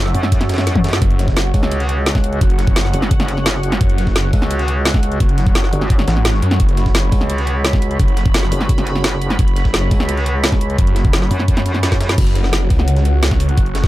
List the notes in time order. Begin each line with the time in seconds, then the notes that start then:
Already playing: F#1 F#4 C#5 E5
0.06 snare, closed hi-hat
0.14 F#2, closed hi-hat, open hi-hat
0.23 snare
0.32 kick, snare, closed hi-hat
0.41 snare, closed hi-hat
0.49 snare, closed hi-hat
0.54 snare, closed hi-hat
0.58 snare, closed hi-hat
0.67 snare, closed hi-hat, open hi-hat
0.76 kick, high tom
0.84 snare, closed hi-hat
0.89 snare, closed hi-hat
0.93 snare, closed hi-hat
1.02 F#1 F#5, kick, closed hi-hat
1.11 closed hi-hat
1.19 snare, closed hi-hat
1.28 kick, snare
1.36 snare, closed hi-hat
1.54 C#2, kick, closed hi-hat, open hi-hat
1.63 snare
1.71 closed hi-hat
1.80 snare, closed hi-hat
1.89 closed hi-hat
2.06 snare, closed hi-hat
2.15 kick, snare
2.24 closed hi-hat
2.33 closed hi-hat
2.41 F#1, kick, closed hi-hat
2.50 closed hi-hat
2.59 snare, closed hi-hat
2.67 kick, closed hi-hat
2.76 snare, closed hi-hat
2.85 snare, closed hi-hat
2.94 F#1, closed hi-hat, open hi-hat
3.02 snare
3.11 kick, closed hi-hat
3.20 snare, closed hi-hat
3.28 snare, closed hi-hat
3.37 snare
3.46 snare, closed hi-hat
3.55 snare
3.63 closed hi-hat
3.72 snare, closed hi-hat
3.81 F#1, kick, closed hi-hat
3.90 closed hi-hat
3.98 snare, closed hi-hat
4.07 kick, snare
4.16 snare, closed hi-hat
4.33 C#2, kick, closed hi-hat, open hi-hat
4.42 snare
4.51 closed hi-hat
4.59 snare, closed hi-hat
4.68 closed hi-hat
4.85 snare, closed hi-hat
4.94 kick, snare
5.03 closed hi-hat
5.12 closed hi-hat
5.20 F#1, kick, closed hi-hat
5.29 closed hi-hat
5.38 snare, closed hi-hat
5.46 kick, closed hi-hat
5.55 snare, closed hi-hat
5.64 snare, closed hi-hat
5.73 G1, closed hi-hat, open hi-hat
5.81 snare
5.90 kick, closed hi-hat
5.99 snare, closed hi-hat
6.08 A1, snare, closed hi-hat
6.16 snare
6.25 snare, closed hi-hat
6.34 snare
6.42 F#2, closed hi-hat
6.51 snare, closed hi-hat
6.60 F#1 B5, kick, closed hi-hat
6.69 closed hi-hat
6.77 snare, closed hi-hat
6.86 kick, snare
6.95 snare, closed hi-hat
7.12 C#2, kick, closed hi-hat, open hi-hat
7.21 snare
7.30 closed hi-hat
7.38 snare, closed hi-hat
7.47 closed hi-hat
7.64 snare, closed hi-hat
7.73 kick, snare
7.82 closed hi-hat
7.91 closed hi-hat
7.99 F#1, kick, closed hi-hat
8.08 closed hi-hat
8.17 snare, closed hi-hat
8.26 kick, closed hi-hat
8.34 snare, closed hi-hat
8.43 snare, closed hi-hat
8.52 F#1, closed hi-hat, open hi-hat
8.61 snare
8.69 kick, closed hi-hat
8.78 snare, closed hi-hat
8.87 snare, closed hi-hat
8.95 snare
9.04 snare, closed hi-hat
9.13 snare
9.21 closed hi-hat
9.30 snare, closed hi-hat
9.39 F#1, kick, closed hi-hat
9.48 closed hi-hat
9.56 snare, closed hi-hat
9.65 kick, snare
9.74 snare, closed hi-hat
9.91 C#2, kick, closed hi-hat, open hi-hat
10.00 snare
10.09 closed hi-hat
10.17 snare, closed hi-hat
10.26 closed hi-hat
10.44 snare, closed hi-hat
10.52 kick, snare
10.61 closed hi-hat
10.70 closed hi-hat
10.78 F#1, kick, closed hi-hat
10.87 closed hi-hat
10.96 snare, closed hi-hat
11.05 kick, closed hi-hat
11.13 snare, closed hi-hat
11.22 snare, closed hi-hat
11.31 F#2, closed hi-hat, open hi-hat
11.40 snare
11.48 kick, closed hi-hat
11.57 snare, closed hi-hat
11.66 snare, closed hi-hat
11.74 snare
11.83 snare, closed hi-hat
11.92 kick, snare
12.01 snare, closed hi-hat
12.09 snare, closed hi-hat
12.18 F#1 F#4 C#5 F#5, kick, closed hi-hat, crash
12.27 closed hi-hat
12.35 snare, closed hi-hat
12.44 snare
12.53 snare, closed hi-hat
12.70 C#2, kick, closed hi-hat, open hi-hat
12.79 snare
12.88 closed hi-hat
12.96 snare, closed hi-hat
13.05 closed hi-hat
13.23 snare, closed hi-hat
13.31 kick, snare
13.40 closed hi-hat, open hi-hat
13.49 closed hi-hat
13.57 F#1, kick, closed hi-hat
13.66 closed hi-hat
13.75 snare, closed hi-hat
13.84 kick, snare